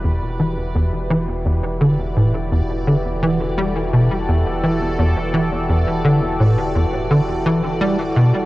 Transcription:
<<
  \new Staff \with { instrumentName = "Synth texture" } { \time 4/4 \key e \minor \tempo 4 = 85 d''1~ | d''1~ | d''1 | }
  \new Staff \with { instrumentName = "Analog synth pad" } { \time 4/4 \key e \minor << { b'1 | a'1~ | a'1 | } \\ { <e e' fis' g'>1~ | <e e' fis' g'>1~ | <e e' fis' g'>1 | } >> }
  \new Staff \with { instrumentName = "Analog synth bass" } { \clef bass \time 4/4 \key e \minor e,8 e8 e,8 e8 e,8 d8 a,8 e,8 | d8 e8 g8 b,8 e,8 e8 e,8 e8 | e,8 d8 a,8 e,8 d8 e8 g8 b,8 | }
  \new Staff \with { instrumentName = "Sub bass" } { \clef bass \time 4/4 \key e \minor e,,1~ | e,,1~ | e,,1 | }
>>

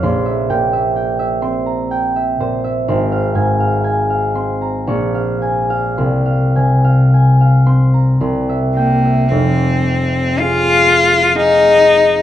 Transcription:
<<
  \new Staff \with { instrumentName = "Harp" } { \time 3/4 \key f \minor \tempo 4 = 61 <g'' c'''>16 e''16 g''16 e''16 g''16 e''16 c'''16 bes''16 g''16 e''16 c''16 e''16 | c'''16 f''16 aes''16 f''16 aes''16 f''16 c'''16 bes''16 des'''16 f''16 aes''16 f''16 | c'''16 f''16 aes''16 f''16 aes''16 f''16 c'''16 bes''16 c'''16 e''16 g''16 e''16 | r2. | }
  \new Staff \with { instrumentName = "Harp" } { \clef bass \time 3/4 \key f \minor bes,,8 bes,4 c'4 bes,8 | aes,,8 aes,4 c'8 bes,,4 | c,8 c4 c'8 c,4 | <f,, f,>4 <f' aes' f''>4 <f' aes' f''>4 | }
  \new Staff \with { instrumentName = "Cello" } { \time 3/4 \key f \minor r2. | r2. | r2 r8 bes8 | c'4 f'4 ees'4 | }
>>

